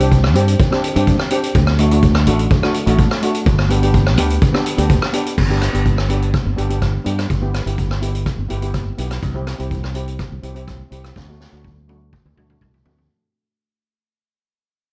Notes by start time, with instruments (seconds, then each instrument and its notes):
Already playing: fingered electric bass C2
0.00 steel pan C4 D4 G4, closed hi-hat
0.12 kick, closed hi-hat
0.24 cross-stick
0.34 fingered electric bass G2, steel pan C4 D4 G4, closed hi-hat
0.48 closed hi-hat
0.60 kick, closed hi-hat
0.71 steel pan C4 D4 G4, cross-stick
0.84 closed hi-hat
0.95 fingered electric bass G2, steel pan C4 D4 G4, closed hi-hat
1.07 kick, closed hi-hat
1.19 cross-stick
1.31 steel pan C4 D4 G4, closed hi-hat
1.43 closed hi-hat
1.55 fingered electric bass D2, kick, closed hi-hat
1.67 cross-stick
1.79 steel pan A3 D4 F#4, closed hi-hat
1.91 steel pan A3 D4 F#4, closed hi-hat
2.03 kick, closed hi-hat
2.15 cross-stick
2.27 fingered electric bass A1, steel pan A3 D4 F#4, closed hi-hat
2.39 closed hi-hat
2.51 kick, closed hi-hat
2.63 steel pan A3 D4 F#4, cross-stick
2.74 closed hi-hat
2.86 fingered electric bass A1, steel pan A3 D4 F#4, closed hi-hat
2.99 kick, closed hi-hat
3.11 cross-stick
3.22 steel pan A3 D4 F#4, closed hi-hat
3.35 closed hi-hat
3.46 fingered electric bass G1, kick, closed hi-hat
3.59 cross-stick
3.69 steel pan B3 D4 G4, closed hi-hat
3.82 steel pan B3 D4 G4, closed hi-hat
3.94 kick, closed hi-hat
4.06 cross-stick
4.17 fingered electric bass D2, steel pan B3 D4 G4, closed hi-hat
4.30 closed hi-hat
4.42 kick, closed hi-hat
4.53 steel pan B3 D4 G4, cross-stick
4.66 closed hi-hat
4.77 fingered electric bass D2, steel pan B3 D4 G4, closed hi-hat
4.90 kick, closed hi-hat
5.02 cross-stick
5.13 steel pan B3 D4 G4, closed hi-hat
5.26 closed hi-hat
5.38 fingered electric bass G1, kick, crash
5.49 steel pan B3 D4 G4
5.62 cross-stick, closed hi-hat
5.73 fingered electric bass G1, steel pan B3 D4 G4, closed hi-hat
5.86 kick, closed hi-hat
5.98 cross-stick
6.09 steel pan B3 D4 G4, closed hi-hat
6.22 closed hi-hat
6.34 kick, cross-stick, closed hi-hat
6.46 fingered electric bass G1
6.56 fingered electric bass G1, steel pan B3 D4 G4, closed hi-hat
6.69 steel pan B3 D4 G4, closed hi-hat
6.82 kick, cross-stick, closed hi-hat
7.05 fingered electric bass G2, steel pan B3 D4 G4, closed hi-hat
7.19 cross-stick, closed hi-hat
7.30 fingered electric bass G1, kick, closed hi-hat
7.41 steel pan B3 E4 G4
7.54 cross-stick, closed hi-hat
7.66 fingered electric bass G1, steel pan B3 E4 G4, closed hi-hat
7.78 kick, closed hi-hat
7.91 cross-stick
8.01 steel pan B3 E4 G4, closed hi-hat
8.15 closed hi-hat
8.26 kick, cross-stick, closed hi-hat
8.39 fingered electric bass G1
8.49 fingered electric bass G1, steel pan B3 E4 G4, closed hi-hat
8.61 steel pan B3 E4 G4, closed hi-hat
8.74 kick, cross-stick, closed hi-hat
8.98 fingered electric bass B1, steel pan B3 E4 G4, closed hi-hat
9.11 cross-stick, closed hi-hat
9.22 fingered electric bass C2, kick, closed hi-hat
9.34 steel pan C4 E4 G4
9.47 cross-stick, closed hi-hat
9.58 fingered electric bass C2, steel pan C4 E4 G4, closed hi-hat
9.71 kick, closed hi-hat
9.84 cross-stick
9.94 steel pan C4 E4 G4, closed hi-hat
10.08 closed hi-hat
10.19 kick, cross-stick, closed hi-hat
10.32 fingered electric bass C2
10.42 fingered electric bass C2, steel pan C4 E4 G4, closed hi-hat
10.55 steel pan C4 E4 G4, closed hi-hat
10.68 kick, cross-stick, closed hi-hat
10.91 fingered electric bass C2, steel pan C4 E4 G4, closed hi-hat
11.04 cross-stick, closed hi-hat
11.16 fingered electric bass D2, kick, snare
11.28 steel pan A3 D4 F#4
11.41 snare
11.52 fingered electric bass D2, steel pan A3 D4 F#4
11.64 kick, high tom
11.88 steel pan A3 D4 F#4, high tom
12.13 kick, mid tom
12.25 fingered electric bass D2, mid tom
12.36 fingered electric bass D2, steel pan A3 D4 F#4, mid tom
12.49 steel pan A3 D4 F#4, mid tom
12.61 fingered electric bass C2, kick, mid tom
12.74 floor tom
12.85 fingered electric bass D2, steel pan A3 D4 F#4, floor tom
12.98 floor tom